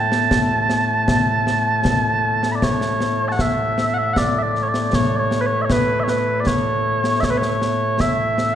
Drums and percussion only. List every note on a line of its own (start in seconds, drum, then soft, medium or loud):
0.12 snare medium
0.31 concert bass drum medium
0.31 snare loud
0.70 snare medium
1.08 concert bass drum medium
1.08 snare loud
1.47 snare medium
1.85 concert bass drum medium
1.85 snare loud
2.43 snare medium
2.62 concert bass drum medium
2.62 snare medium
2.81 snare medium
3.00 snare medium
3.39 concert bass drum medium
3.39 snare medium
3.78 snare medium
4.16 concert bass drum medium
4.16 snare loud
4.55 snare soft
4.74 snare medium
4.93 concert bass drum medium
4.93 snare medium
5.31 snare medium
5.70 concert bass drum medium
5.70 snare medium
6.08 snare medium
6.47 concert bass drum medium
6.47 snare medium
7.04 snare medium
7.23 concert bass drum medium
7.23 snare medium
7.42 snare medium
7.62 snare medium
8.00 concert bass drum medium
8.00 snare medium
8.38 snare medium